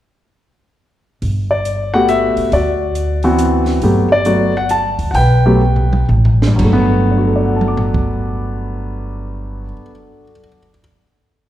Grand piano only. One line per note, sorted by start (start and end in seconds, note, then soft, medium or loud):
1.51 1.95 D5 medium
1.94 2.49 A3 medium
1.94 2.49 B3 soft
1.94 2.49 F#4 medium
1.94 2.49 G4 medium
1.94 2.09 F#5 medium
2.09 2.53 E5 medium
2.53 3.23 F#4 soft
2.53 3.63 D5 medium
3.24 3.79 E3 medium
3.24 3.79 B3 medium
3.24 3.79 C4 soft
3.24 3.80 F#4 medium
3.83 4.08 F#3 soft
3.83 4.08 A3 soft
3.83 4.08 B3 soft
3.83 4.08 G4 medium
4.12 4.56 D5 medium
4.26 4.51 F#3 soft
4.26 4.51 A3 soft
4.26 4.51 B3 soft
4.26 4.51 F#4 medium
4.57 4.70 F#5 medium
4.71 5.11 A5 medium
5.11 5.15 F#5 medium
5.11 6.05 G5 medium
5.17 6.06 B4 soft
5.46 5.60 F#3 medium
5.46 5.60 A3 soft
5.46 5.60 B3 medium
5.46 5.60 G4 medium
6.47 9.64 G2 medium
6.56 9.72 F#3 soft
6.64 9.81 A3 soft
6.73 9.89 B3 medium
7.11 10.23 D4 soft
7.18 10.30 F#4 soft
7.27 10.39 A4 soft
7.36 10.48 D5 soft
7.46 10.58 F#5 soft
7.56 10.68 A5 soft
7.68 10.80 D6 soft